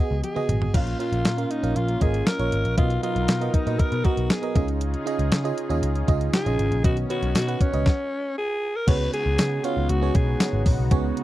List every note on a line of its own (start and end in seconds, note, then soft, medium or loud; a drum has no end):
0.00 0.76 C#3 medium
0.00 0.35 B3 medium
0.00 0.36 F#4 medium
0.00 0.23 G#4 medium
0.00 0.36 G#4 medium
0.00 0.37 D#5 medium
0.11 0.20 C#2 medium
0.24 0.76 G#4 medium
0.24 closed hi-hat medium
0.24 high tom soft
0.35 0.71 B3 medium
0.35 0.71 F#4 medium
0.35 0.72 G#4 medium
0.35 0.72 D#5 medium
0.35 mid tom medium
0.49 0.68 G#1 medium
0.49 closed hi-hat medium
0.49 mid tom medium
0.62 floor tom medium
0.74 0.93 A#1 medium
0.74 1.47 A#2 medium
0.74 2.76 A#3 medium
0.74 0.98 C#4 medium
0.74 2.76 C#4 medium
0.74 0.98 F4 medium
0.74 2.76 F4 medium
0.74 0.99 F4 medium
0.74 0.98 A#4 medium
0.74 0.98 F5 medium
0.74 kick loud
0.74 closed hi-hat medium
0.74 crash medium
0.87 closed hi-hat soft
0.99 1.35 C#4 medium
0.99 1.35 F4 medium
0.99 1.52 F4 medium
0.99 1.35 A#4 medium
0.99 1.35 F5 medium
0.99 closed hi-hat medium
1.12 1.22 A#1 medium
1.12 closed hi-hat medium
1.25 1.44 A#2 medium
1.25 snare loud
1.25 closed hi-hat loud
1.37 1.61 C#4 medium
1.37 1.61 F4 medium
1.37 1.61 A#4 medium
1.37 1.62 F5 medium
1.37 closed hi-hat medium
1.51 1.78 D#4 medium
1.51 closed hi-hat medium
1.62 1.73 A#1 medium
1.62 1.98 C#4 medium
1.62 1.98 F4 medium
1.62 1.99 A#4 medium
1.62 1.99 F5 medium
1.62 closed hi-hat medium
1.76 1.95 A#1 medium
1.76 2.03 F4 medium
1.76 closed hi-hat medium
1.88 closed hi-hat soft
2.01 2.21 G#1 medium
2.01 2.36 C#4 medium
2.01 2.37 F4 medium
2.01 2.28 G#4 loud
2.01 2.37 A#4 medium
2.01 2.37 D#5 medium
2.01 kick medium
2.01 closed hi-hat medium
2.14 closed hi-hat soft
2.26 2.77 A#4 loud
2.26 snare loud
2.26 closed hi-hat medium
2.39 2.49 A#1 medium
2.39 2.75 C#4 medium
2.39 2.75 F4 medium
2.39 2.75 A#4 medium
2.39 2.75 C#5 medium
2.39 closed hi-hat soft
2.52 2.62 G#1 medium
2.52 closed hi-hat medium
2.65 2.75 A#1 medium
2.65 closed hi-hat soft
2.77 2.97 B1 loud
2.77 3.50 B2 medium
2.77 3.01 B3 medium
2.77 4.54 B3 medium
2.77 4.54 D#4 medium
2.77 3.01 F4 loud
2.77 3.01 F#4 medium
2.77 4.54 A#4 medium
2.77 3.01 A#4 medium
2.77 3.02 D#5 medium
2.77 kick loud
2.77 closed hi-hat medium
2.90 closed hi-hat soft
3.03 3.39 F#3 medium
3.03 3.38 B3 medium
3.03 3.56 F4 loud
3.03 3.39 A#4 medium
3.03 3.39 D#5 medium
3.03 closed hi-hat medium
3.16 3.25 B1 loud
3.16 closed hi-hat medium
3.28 3.48 B2 medium
3.28 snare loud
3.28 closed hi-hat loud
3.40 3.64 B3 medium
3.40 3.65 F#4 medium
3.40 3.65 A#4 medium
3.40 3.65 D#5 medium
3.40 closed hi-hat medium
3.54 3.81 D#4 medium
3.54 kick medium
3.54 closed hi-hat medium
3.66 3.76 A#2 medium
3.66 4.02 B3 medium
3.66 4.02 F#4 medium
3.66 4.02 A#4 medium
3.66 4.02 D#5 medium
3.66 closed hi-hat medium
3.79 4.06 A#4 loud
3.79 muted picked electric bass stroke soft
3.79 kick medium
3.79 closed hi-hat medium
3.92 4.02 B2 medium
3.92 closed hi-hat soft
4.04 4.40 B3 medium
4.04 4.40 F#4 medium
4.04 4.32 F#4 medium
4.04 4.40 A#4 medium
4.04 4.40 D#5 medium
4.04 kick medium
4.04 closed hi-hat medium
4.17 4.27 B1 medium
4.17 closed hi-hat soft
4.30 4.68 G#4 medium
4.30 snare loud
4.30 closed hi-hat medium
4.42 4.55 B3 medium
4.42 4.55 F#4 medium
4.42 4.56 A#4 medium
4.42 4.55 D#5 medium
4.42 closed hi-hat soft
4.55 4.94 C#2 loud
4.55 5.28 C#3 medium
4.55 6.82 C#3 medium
4.55 5.03 C#4 medium
4.55 6.82 C#4 medium
4.55 6.82 D#4 medium
4.55 5.03 F4 medium
4.55 6.82 F4 medium
4.55 6.82 G#4 medium
4.55 5.03 G#4 medium
4.55 5.03 D#5 medium
4.55 kick loud
4.55 closed hi-hat medium
4.68 closed hi-hat soft
4.81 closed hi-hat medium
4.94 closed hi-hat soft
5.06 5.42 C#4 medium
5.06 5.42 F4 medium
5.06 5.42 G#4 medium
5.06 5.42 D#5 loud
5.06 closed hi-hat medium
5.19 5.29 C#2 loud
5.19 closed hi-hat medium
5.32 5.51 C#3 loud
5.32 snare loud
5.32 closed hi-hat loud
5.44 5.68 C#4 medium
5.44 5.68 F4 medium
5.44 5.68 G#4 medium
5.44 5.68 D#5 loud
5.44 closed hi-hat soft
5.58 closed hi-hat medium
5.69 5.80 D#2 medium
5.69 6.05 C#4 medium
5.69 6.05 F4 medium
5.69 6.06 G#4 medium
5.69 6.06 D#5 loud
5.69 closed hi-hat medium
5.83 6.02 C#2 loud
5.83 closed hi-hat medium
5.96 closed hi-hat soft
6.07 6.27 C#2 medium
6.07 6.43 C#4 medium
6.07 6.43 F4 medium
6.07 6.44 G#4 medium
6.07 6.44 D#5 loud
6.07 kick medium
6.07 closed hi-hat medium
6.21 closed hi-hat medium
6.33 6.81 G#4 loud
6.33 snare loud
6.33 closed hi-hat loud
6.46 6.56 A#1 medium
6.46 6.81 C#4 medium
6.46 6.82 F4 medium
6.46 6.82 G#4 medium
6.46 6.82 D#5 medium
6.46 closed hi-hat soft
6.59 6.68 G#1 medium
6.59 closed hi-hat medium
6.72 6.81 A#1 medium
6.72 closed hi-hat soft
6.84 7.03 B1 medium
6.84 7.57 B2 medium
6.84 7.85 D#3 medium
6.84 7.85 B3 medium
6.84 7.08 C#4 medium
6.84 7.85 C#4 medium
6.84 7.08 F#4 medium
6.84 6.96 F#4 loud
6.84 7.08 B4 medium
6.84 7.08 D#5 medium
6.84 kick loud
6.84 closed hi-hat loud
6.97 closed hi-hat medium
7.09 7.45 C#4 medium
7.09 7.45 F#4 medium
7.09 7.34 F#4 loud
7.09 7.45 B4 medium
7.09 7.46 C#5 medium
7.09 closed hi-hat medium
7.23 7.32 B1 loud
7.23 closed hi-hat medium
7.35 7.54 B2 loud
7.35 7.62 F#4 loud
7.35 snare loud
7.35 closed hi-hat loud
7.35 tambourine medium
7.47 7.71 C#4 medium
7.47 7.71 F#4 medium
7.47 7.72 B4 medium
7.47 7.72 F#5 medium
7.47 closed hi-hat medium
7.61 8.37 C#4 medium
7.61 kick medium
7.61 closed hi-hat medium
7.73 7.83 C#2 medium
7.73 7.86 C#4 medium
7.73 7.86 F#4 medium
7.73 7.86 B4 medium
7.73 7.86 D#5 medium
7.73 closed hi-hat medium
7.86 kick loud
7.86 snare medium
8.38 8.77 G#4 loud
8.76 8.90 A#4 loud
8.87 9.07 C#2 loud
8.87 9.60 C#3 medium
8.87 11.23 C#3 medium
8.87 11.23 G#3 medium
8.87 9.58 B3 medium
8.87 11.23 B3 medium
8.87 9.58 C#4 medium
8.87 11.23 D#4 medium
8.87 9.59 F#4 medium
8.87 11.23 F#4 medium
8.87 9.59 G#4 medium
8.87 9.13 B4 loud
8.87 9.59 C#5 medium
8.87 kick loud
8.87 closed hi-hat medium
8.87 crash loud
9.13 9.66 G#4 loud
9.13 closed hi-hat medium
9.26 9.35 C#2 loud
9.38 9.58 C#3 loud
9.38 snare loud
9.38 closed hi-hat loud
9.38 tambourine medium
9.64 9.99 B3 medium
9.64 9.99 C#4 medium
9.64 9.91 F4 medium
9.64 10.00 F#4 medium
9.64 10.00 G#4 medium
9.64 10.00 C#5 medium
9.64 closed hi-hat medium
9.77 9.86 C#2 medium
9.89 10.09 C#2 loud
9.89 10.17 F#4 medium
9.89 closed hi-hat medium
10.02 10.85 B3 medium
10.02 10.85 C#4 medium
10.02 10.85 F#4 medium
10.02 10.85 G#4 medium
10.02 10.85 C#5 medium
10.15 10.34 B1 medium
10.15 10.66 G#4 medium
10.15 kick medium
10.15 closed hi-hat medium
10.40 snare loud
10.40 closed hi-hat loud
10.40 tambourine medium
10.53 10.63 G#1 medium
10.66 10.75 A#1 medium
10.66 kick loud
10.66 open hi-hat medium
10.79 10.88 B1 loud
10.91 11.10 C#2 loud
10.91 11.23 C#3 medium
10.91 11.23 B3 medium
10.91 11.23 C#4 medium
10.91 11.23 F#4 medium
10.91 11.23 G#4 medium
10.91 11.23 C#5 medium
10.91 kick loud
10.91 closed hi-hat loud
11.17 closed hi-hat medium